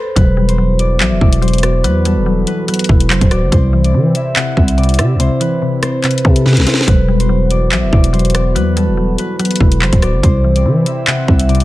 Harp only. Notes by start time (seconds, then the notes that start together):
Already playing: A4 C5
0.17 B4
0.48 C5
0.79 D5
1.00 E5
1.21 D5
1.42 C5
1.63 D5
1.84 B4
2.05 A4
2.47 B4
2.68 B4
3.10 C5
3.31 D5
3.52 C5
3.84 D5
4.16 E5
4.36 F#5
4.57 E5
4.78 D5
4.99 E5
5.20 C5
5.41 B4
5.83 C5
6.04 B4
6.25 A4
6.46 B4
6.67 C5
6.88 B4
7.20 C5
7.51 D5
7.71 E5
7.92 D5
8.13 C5
8.34 D5
8.55 B4
8.76 A4
9.19 B4
9.39 B4
9.81 C5
10.02 D5
10.23 C5
10.56 D5
10.87 E5
11.07 F#5
11.28 E5
11.49 D5